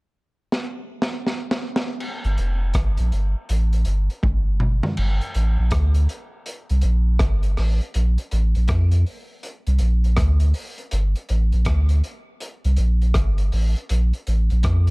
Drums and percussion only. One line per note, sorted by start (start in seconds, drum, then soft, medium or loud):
0.52 snare medium
1.02 snare medium
1.27 snare medium
1.51 snare medium
1.76 snare medium
2.00 crash medium
2.24 closed hi-hat soft
2.38 closed hi-hat medium
2.74 kick loud
2.74 cross-stick loud
2.74 closed hi-hat medium
2.97 closed hi-hat medium
3.12 closed hi-hat medium
3.49 closed hi-hat medium
3.73 closed hi-hat soft
3.85 closed hi-hat medium
4.10 closed hi-hat soft
4.23 kick loud
4.23 high tom soft
4.60 mid tom medium
4.83 floor tom medium
4.97 crash medium
5.21 closed hi-hat soft
5.34 closed hi-hat medium
5.71 kick loud
5.71 cross-stick loud
5.71 closed hi-hat medium
5.94 closed hi-hat medium
6.09 closed hi-hat medium
6.46 closed hi-hat medium
6.69 closed hi-hat soft
6.81 closed hi-hat medium
7.19 kick loud
7.19 cross-stick loud
7.19 closed hi-hat medium
7.43 closed hi-hat soft
7.57 cross-stick medium
7.57 open hi-hat medium
7.81 closed hi-hat soft
7.94 closed hi-hat medium
8.18 closed hi-hat soft
8.31 closed hi-hat medium
8.55 closed hi-hat soft
8.68 kick loud
8.68 cross-stick loud
8.68 closed hi-hat medium
8.91 closed hi-hat medium
9.06 open hi-hat soft
9.43 closed hi-hat medium
9.67 closed hi-hat soft
9.79 closed hi-hat medium
10.04 closed hi-hat soft
10.17 kick loud
10.17 cross-stick loud
10.17 closed hi-hat medium
10.40 closed hi-hat medium
10.54 open hi-hat medium
10.78 closed hi-hat soft
10.91 closed hi-hat medium
11.15 closed hi-hat soft
11.29 closed hi-hat medium
11.52 closed hi-hat soft
11.65 kick loud
11.65 cross-stick loud
11.65 closed hi-hat medium
11.89 closed hi-hat medium
12.04 closed hi-hat medium
12.40 closed hi-hat medium
12.64 closed hi-hat soft
12.77 closed hi-hat medium
13.02 closed hi-hat soft
13.14 kick loud
13.14 cross-stick loud
13.14 closed hi-hat medium
13.38 closed hi-hat soft
13.52 open hi-hat medium
13.76 closed hi-hat soft
13.89 closed hi-hat medium
14.13 closed hi-hat soft
14.27 closed hi-hat medium
14.50 closed hi-hat soft
14.63 kick loud
14.63 cross-stick loud
14.63 closed hi-hat medium
14.87 closed hi-hat soft